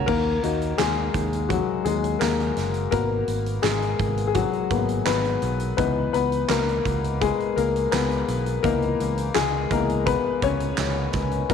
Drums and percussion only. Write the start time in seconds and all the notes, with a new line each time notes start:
0.08 kick, crash
0.43 closed hi-hat
0.61 closed hi-hat
0.79 snare, clap, closed hi-hat
1.14 kick, closed hi-hat
1.33 closed hi-hat
1.50 kick, closed hi-hat
1.85 closed hi-hat
2.04 closed hi-hat
2.22 snare, clap, closed hi-hat
2.40 closed hi-hat
2.56 snare, closed hi-hat
2.74 closed hi-hat
2.92 kick, closed hi-hat
3.28 closed hi-hat
3.46 closed hi-hat
3.64 snare, clap, closed hi-hat
3.82 closed hi-hat
4.00 kick, closed hi-hat
4.17 closed hi-hat
4.34 kick, closed hi-hat
4.53 closed hi-hat
4.70 kick, closed hi-hat
4.89 closed hi-hat
5.06 snare, clap, closed hi-hat
5.25 closed hi-hat
5.42 closed hi-hat
5.60 closed hi-hat
5.78 kick, closed hi-hat
6.14 closed hi-hat
6.32 closed hi-hat
6.49 snare, clap, closed hi-hat
6.69 closed hi-hat
6.85 kick, closed hi-hat
7.04 closed hi-hat
7.22 kick, closed hi-hat
7.40 closed hi-hat
7.57 closed hi-hat
7.76 closed hi-hat
7.93 snare, clap, closed hi-hat
8.11 closed hi-hat
8.28 closed hi-hat
8.46 closed hi-hat
8.64 kick, closed hi-hat
8.82 closed hi-hat
9.00 closed hi-hat
9.17 closed hi-hat
9.35 snare, clap, closed hi-hat
9.71 kick, closed hi-hat
9.89 closed hi-hat
10.07 kick, closed hi-hat
10.42 kick, closed hi-hat
10.60 closed hi-hat
10.78 snare, clap, closed hi-hat
11.13 kick, snare, closed hi-hat
11.31 closed hi-hat
11.50 kick, closed hi-hat